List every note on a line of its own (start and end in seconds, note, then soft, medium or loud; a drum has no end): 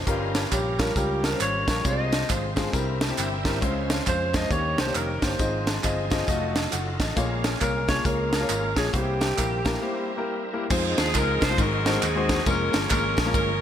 0.00 0.32 C5 medium
0.00 0.33 C5 medium
0.00 0.32 D#5 medium
0.06 0.45 G1 medium
0.06 0.75 G2 medium
0.06 0.41 G3 medium
0.06 1.81 G3 medium
0.06 1.81 C#4 medium
0.06 0.41 C#4 medium
0.06 1.81 F4 medium
0.06 0.41 F4 medium
0.06 0.14 G#4 medium
0.06 0.42 A#4 medium
0.06 kick loud
0.06 closed hi-hat medium
0.06 tambourine medium
0.12 1.84 A#4 medium
0.35 snare loud
0.35 closed hi-hat medium
0.35 tambourine medium
0.51 0.90 A#1 medium
0.51 0.70 G3 medium
0.51 0.71 C#4 medium
0.51 0.71 F4 medium
0.51 0.82 G4 medium
0.51 0.71 C#5 medium
0.51 kick medium
0.51 clap medium
0.51 closed hi-hat loud
0.51 tambourine medium
0.78 0.90 G3 medium
0.78 0.91 C#4 medium
0.78 0.91 F4 medium
0.78 0.91 A#4 medium
0.78 0.99 A#4 medium
0.78 kick medium
0.78 snare loud
0.78 closed hi-hat medium
0.78 tambourine soft
0.96 1.34 C#2 medium
0.96 1.24 G3 medium
0.96 1.24 C#4 medium
0.96 1.25 F4 medium
0.96 1.26 G4 medium
0.96 1.25 A#4 medium
0.96 kick loud
0.96 closed hi-hat medium
0.96 tambourine medium
1.24 1.41 A#4 medium
1.24 snare loud
1.24 closed hi-hat medium
1.24 tambourine soft
1.32 1.55 G3 medium
1.32 1.55 C#4 medium
1.32 1.55 F4 medium
1.32 1.56 C5 medium
1.40 1.64 G#1 medium
1.40 1.67 C#5 medium
1.40 clap medium
1.40 closed hi-hat medium
1.40 tambourine loud
1.67 1.82 A#1 medium
1.67 1.79 G3 medium
1.67 1.79 C#4 medium
1.67 1.80 F4 medium
1.67 1.80 A#4 medium
1.67 1.88 C#5 medium
1.67 kick medium
1.67 snare loud
1.67 closed hi-hat medium
1.67 tambourine medium
1.84 2.23 C2 loud
1.84 2.53 C3 medium
1.84 2.19 G#3 medium
1.84 2.72 G#3 medium
1.84 2.19 C4 medium
1.84 2.72 C4 medium
1.84 2.19 F4 medium
1.84 2.72 F4 soft
1.84 1.91 B4 soft
1.84 2.19 C5 medium
1.84 2.30 D#5 loud
1.84 kick loud
1.84 closed hi-hat medium
1.84 tambourine medium
1.90 2.75 C5 medium
2.12 snare loud
2.12 closed hi-hat medium
2.12 tambourine medium
2.28 2.67 G#1 medium
2.28 2.48 G#3 medium
2.28 2.48 C4 medium
2.28 2.48 F4 medium
2.28 2.49 C5 medium
2.28 kick medium
2.28 clap medium
2.28 closed hi-hat loud
2.28 tambourine medium
2.56 2.68 G#3 medium
2.56 2.68 C4 medium
2.56 2.68 F4 medium
2.56 2.69 G#4 medium
2.56 kick medium
2.56 snare loud
2.56 closed hi-hat medium
2.56 tambourine medium
2.73 3.11 C2 loud
2.73 3.41 C3 medium
2.73 3.01 G3 medium
2.73 3.61 G3 medium
2.73 3.02 C4 medium
2.73 3.61 C4 medium
2.73 3.02 E4 medium
2.73 3.61 E4 medium
2.73 2.80 A4 medium
2.73 3.02 A#4 medium
2.73 kick loud
2.73 closed hi-hat medium
2.73 tambourine medium
2.80 3.64 A#4 medium
3.01 snare loud
3.01 closed hi-hat medium
3.01 tambourine medium
3.08 3.32 G3 medium
3.08 3.32 C4 medium
3.08 3.33 E4 medium
3.08 3.33 G4 medium
3.17 3.62 G1 medium
3.17 3.45 E5 medium
3.17 3.44 G5 medium
3.17 clap medium
3.17 closed hi-hat medium
3.17 tambourine medium
3.44 3.56 G3 medium
3.44 3.57 C4 medium
3.44 3.57 E4 medium
3.44 3.57 A#4 medium
3.44 3.61 C5 medium
3.44 3.88 E5 medium
3.44 kick medium
3.44 snare medium
3.44 closed hi-hat medium
3.44 tambourine medium
3.61 4.00 C#2 medium
3.61 4.30 C#3 medium
3.61 3.96 G#3 medium
3.61 4.49 G#3 medium
3.61 3.96 C#4 medium
3.61 4.49 C#4 medium
3.61 3.96 F4 medium
3.61 4.49 F4 medium
3.61 3.96 C5 medium
3.61 4.49 C5 medium
3.61 kick loud
3.61 closed hi-hat medium
3.61 tambourine medium
3.90 snare loud
3.90 closed hi-hat medium
3.90 tambourine soft
4.06 4.45 F2 medium
4.06 4.25 G#3 medium
4.06 4.25 C#4 medium
4.06 4.26 F4 medium
4.06 4.26 C5 medium
4.06 4.37 C5 medium
4.06 kick medium
4.06 clap medium
4.06 closed hi-hat medium
4.06 tambourine medium
4.33 4.45 G#3 medium
4.33 4.45 C#4 medium
4.33 4.46 F4 medium
4.33 4.46 C5 medium
4.33 4.54 D#5 medium
4.33 kick medium
4.33 snare loud
4.33 closed hi-hat medium
4.33 tambourine medium
4.50 4.74 D#2 medium
4.50 5.19 D#3 medium
4.50 5.39 G3 medium
4.50 4.79 A#3 medium
4.50 5.38 C#4 medium
4.50 4.79 D#4 medium
4.50 5.39 D#4 soft
4.50 4.79 G4 medium
4.50 4.58 A4 medium
4.50 4.79 C#5 medium
4.50 4.81 C#5 medium
4.50 kick loud
4.50 closed hi-hat medium
4.50 tambourine medium
4.58 5.41 A#4 medium
4.78 4.98 C5 medium
4.78 snare loud
4.78 closed hi-hat medium
4.78 tambourine soft
4.86 5.10 A#3 medium
4.86 5.10 D#4 medium
4.86 5.10 G4 medium
4.86 5.10 C#5 medium
4.95 5.19 F1 medium
4.95 5.25 A#4 medium
4.95 clap medium
4.95 closed hi-hat medium
4.95 tambourine medium
5.22 5.37 G1 medium
5.22 5.34 A#3 medium
5.22 5.34 D#4 medium
5.22 5.34 G4 medium
5.22 5.84 C5 medium
5.22 5.35 C#5 medium
5.22 kick medium
5.22 snare loud
5.22 closed hi-hat medium
5.22 tambourine medium
5.39 5.77 G#1 loud
5.39 6.08 G#2 medium
5.39 6.27 F3 medium
5.39 5.73 C4 medium
5.39 6.27 C4 medium
5.39 6.27 D#4 soft
5.39 5.74 F4 medium
5.39 5.47 G4 soft
5.39 5.74 G#4 medium
5.39 5.74 D#5 medium
5.39 kick loud
5.39 closed hi-hat medium
5.39 tambourine medium
5.46 6.30 G#4 medium
5.67 snare loud
5.67 closed hi-hat medium
5.67 tambourine soft
5.83 6.22 G1 medium
5.83 6.03 C4 medium
5.83 6.03 F4 medium
5.83 6.03 G#4 medium
5.83 6.03 D#5 medium
5.83 kick medium
5.83 clap medium
5.83 closed hi-hat medium
5.83 tambourine medium
6.10 6.23 C4 medium
6.10 6.23 F4 medium
6.10 6.23 G#4 medium
6.10 6.23 D#5 medium
6.10 kick medium
6.10 snare loud
6.10 closed hi-hat medium
6.10 tambourine medium
6.27 6.66 F1 loud
6.27 7.15 F#3 medium
6.27 6.56 A3 medium
6.27 7.15 D#4 medium
6.27 6.56 F4 medium
6.27 7.15 F4 medium
6.27 6.57 F#4 medium
6.27 7.15 A4 medium
6.27 6.54 D#5 medium
6.27 kick loud
6.27 closed hi-hat medium
6.27 tambourine medium
6.56 6.72 D#5 medium
6.56 snare loud
6.56 closed hi-hat medium
6.56 tambourine soft
6.72 6.96 F#1 medium
6.72 6.99 F#5 medium
6.72 clap medium
6.72 closed hi-hat medium
6.72 tambourine medium
7.00 7.14 A1 medium
7.00 7.42 D#5 medium
7.00 kick medium
7.00 snare loud
7.00 closed hi-hat medium
7.00 tambourine medium
7.16 7.55 A#1 medium
7.16 7.85 A#2 medium
7.16 8.91 G#3 medium
7.16 7.51 A#3 medium
7.16 8.90 C#4 medium
7.16 7.51 F4 medium
7.16 8.91 F4 medium
7.16 7.51 G#4 medium
7.16 7.23 A4 medium
7.16 7.51 C#5 medium
7.16 kick loud
7.16 closed hi-hat medium
7.16 tambourine medium
7.22 8.93 A#4 medium
7.44 snare loud
7.44 closed hi-hat medium
7.44 tambourine medium
7.60 7.99 C2 medium
7.60 7.80 A#3 medium
7.60 7.80 F4 medium
7.60 7.80 G#4 medium
7.60 7.87 A#4 medium
7.60 7.80 C#5 medium
7.60 kick medium
7.60 clap medium
7.60 closed hi-hat medium
7.60 tambourine medium
7.88 8.00 A#3 medium
7.88 8.00 F4 medium
7.88 8.00 G#4 medium
7.88 8.07 C#5 medium
7.88 8.01 C#5 medium
7.88 kick medium
7.88 snare loud
7.88 closed hi-hat medium
7.88 tambourine medium
8.05 8.43 C#2 loud
8.05 8.33 A#3 medium
8.05 8.33 F4 medium
8.05 8.34 G#4 medium
8.05 8.78 A#4 loud
8.05 8.34 C#5 medium
8.05 kick loud
8.05 closed hi-hat medium
8.05 tambourine medium
8.33 snare loud
8.33 closed hi-hat medium
8.33 tambourine medium
8.40 8.64 A#3 medium
8.40 8.64 F4 medium
8.40 8.65 G#4 medium
8.40 8.65 C#5 medium
8.49 8.73 G#1 medium
8.49 clap medium
8.49 closed hi-hat medium
8.49 tambourine medium
8.76 8.91 A#1 medium
8.76 8.89 A#3 medium
8.76 8.89 F4 medium
8.76 8.92 G#4 medium
8.76 8.89 G#4 medium
8.76 8.89 C#5 medium
8.76 kick medium
8.76 snare loud
8.76 closed hi-hat medium
8.76 tambourine medium
8.93 9.31 C2 medium
8.93 9.62 C3 medium
8.93 10.67 G3 medium
8.93 9.28 A#3 medium
8.93 10.67 C4 medium
8.93 10.67 E4 medium
8.93 9.28 E4 medium
8.93 10.22 G4 medium
8.93 9.28 G4 medium
8.93 10.67 A#4 medium
8.93 9.28 C5 medium
8.93 kick loud
8.93 closed hi-hat medium
8.93 tambourine medium
9.21 snare loud
9.21 closed hi-hat medium
9.21 tambourine soft
9.37 9.76 A#1 medium
9.37 9.57 A#3 medium
9.37 9.57 E4 medium
9.37 9.57 G4 medium
9.37 9.57 A#4 medium
9.37 kick medium
9.37 clap medium
9.37 closed hi-hat medium
9.37 tambourine medium
9.65 9.77 A#3 medium
9.65 9.77 E4 medium
9.65 9.77 G4 medium
9.65 9.77 A#4 medium
9.65 kick medium
9.65 snare loud
9.65 closed hi-hat medium
9.65 tambourine medium
9.81 10.10 A#3 medium
9.81 10.10 E4 medium
9.81 10.10 G4 medium
9.81 10.11 C5 medium
10.17 10.41 A#3 medium
10.17 10.41 E4 medium
10.17 10.41 G4 medium
10.17 10.41 A#4 medium
10.53 10.65 A#3 medium
10.53 10.65 E4 medium
10.53 10.65 G4 medium
10.53 10.66 A#4 medium
10.70 10.94 F2 loud
10.70 11.57 F3 medium
10.70 11.04 G#3 loud
10.70 11.57 G#3 medium
10.70 11.04 C4 medium
10.70 11.57 C4 medium
10.70 11.57 D#4 medium
10.70 11.05 D#4 medium
10.70 11.05 F4 medium
10.70 11.57 G#4 medium
10.70 11.05 C5 loud
10.70 kick loud
10.70 crash loud
10.70 tambourine medium
10.98 11.12 D#2 medium
10.98 11.14 G#4 medium
10.98 snare loud
10.98 ride medium
10.98 tambourine medium
11.14 11.38 C#2 medium
11.14 11.42 G#3 medium
11.14 11.43 C4 medium
11.14 11.43 D#4 medium
11.14 11.43 F4 medium
11.14 11.42 A#4 medium
11.14 11.43 A#4 medium
11.14 kick medium
11.14 clap loud
11.14 ride medium
11.14 tambourine loud
11.41 11.56 C2 medium
11.41 11.59 C5 loud
11.41 kick loud
11.41 snare loud
11.41 ride medium
11.41 tambourine medium
11.50 11.58 G#3 medium
11.50 11.59 C4 medium
11.50 11.59 D#4 medium
11.50 11.59 F4 medium
11.50 11.59 C5 medium
11.58 11.96 G#1 loud
11.58 12.26 G#2 medium
11.58 12.45 F#3 medium
11.58 12.45 G#3 medium
11.58 11.66 A#3 soft
11.58 12.45 D#4 medium
11.58 12.02 D#4 medium
11.58 12.43 F#4 medium
11.58 12.45 G#4 medium
11.58 12.03 A#4 loud
11.58 kick loud
11.58 ride medium
11.58 tambourine medium
11.64 12.48 C4 medium
11.85 12.04 G#3 medium
11.85 12.04 C4 medium
11.85 12.04 D#4 medium
11.85 12.04 F#4 medium
11.85 12.04 C5 medium
11.85 snare loud
11.85 ride medium
11.85 tambourine medium
12.02 12.40 D#2 medium
12.02 12.44 C4 medium
12.02 12.44 D#4 medium
12.02 12.47 G#4 medium
12.02 clap loud
12.02 ride medium
12.02 tambourine loud
12.16 12.39 G#3 medium
12.16 12.39 C4 medium
12.16 12.39 D#4 medium
12.16 12.39 F#4 medium
12.16 12.39 C5 medium
12.29 kick medium
12.29 snare loud
12.29 ride medium
12.29 tambourine medium
12.46 12.70 F1 loud
12.46 13.61 F3 medium
12.46 12.80 G#3 medium
12.46 13.61 G#3 medium
12.46 12.80 A#3 medium
12.46 13.61 A#3 medium
12.46 12.80 C#4 medium
12.46 13.61 C#4 medium
12.46 12.89 C#4 medium
12.46 12.81 F4 medium
12.46 13.61 G#4 medium
12.46 12.87 A#4 loud
12.46 12.81 A#4 medium
12.46 kick loud
12.46 ride medium
12.46 tambourine medium
12.73 12.88 G1 loud
12.73 snare loud
12.73 ride medium
12.73 tambourine medium
12.90 13.14 G#1 medium
12.90 13.18 G#3 medium
12.90 13.18 A#3 medium
12.90 13.19 C#4 medium
12.90 13.34 C#4 medium
12.90 13.19 F4 medium
12.90 13.31 A#4 medium
12.90 13.19 A#4 medium
12.90 kick medium
12.90 clap loud
12.90 ride medium
12.90 tambourine loud
13.17 13.32 A#1 medium
13.17 kick loud
13.17 snare loud
13.17 ride medium
13.17 tambourine medium
13.25 13.49 G#3 medium
13.25 13.49 A#3 medium
13.25 13.49 C#4 medium
13.25 13.49 F4 medium
13.25 13.49 A#4 medium
13.34 13.61 G1 loud
13.34 13.61 C#4 medium
13.34 13.61 A#4 loud
13.34 kick loud
13.34 ride medium
13.34 tambourine medium